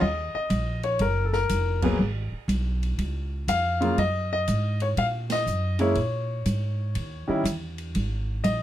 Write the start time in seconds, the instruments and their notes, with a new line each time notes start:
0.01 upright bass D#2, grand piano D#5
0.34 grand piano D#5, muted upright bass stroke
0.50 upright bass A#1, hi-hat pedal, ride
0.83 grand piano C#5, ride
0.99 upright bass F#1, grand piano A#4, ride
1.25 grand piano A4
1.33 grand piano A#4, snare
1.49 upright bass F1, hi-hat pedal, ride
1.82 grand piano F#3 A#3 B3 G#4, kick, crash
1.99 upright bass G#1
2.32 muted upright bass stroke
2.48 upright bass B1, hi-hat pedal, ride
2.83 ride
2.98 upright bass C#2, ride
3.48 upright bass F2, grand piano F5, hi-hat pedal, ride
3.81 grand piano C#3 F#3 A#3 F4, ride
3.98 upright bass F#2, grand piano D#5, ride
4.33 grand piano D#5
4.47 upright bass G#2, hi-hat pedal, ride
4.80 grand piano C#5, ride
4.97 upright bass A#2, grand piano F5, ride
5.30 grand piano D#5, snare, ride
5.46 upright bass F#2, hi-hat pedal
5.79 grand piano C#3 G#3 A#3 E4 C#5, ride
5.95 upright bass A#2, ride
6.45 upright bass G#2, hi-hat pedal, ride
6.95 upright bass D#2, ride
7.28 grand piano D#3 G3 C#4 E4, muted upright bass stroke
7.44 upright bass E2, hi-hat pedal, ride
7.78 ride
7.95 upright bass G#1, ride
8.44 upright bass A#1, grand piano D#5, hi-hat pedal, ride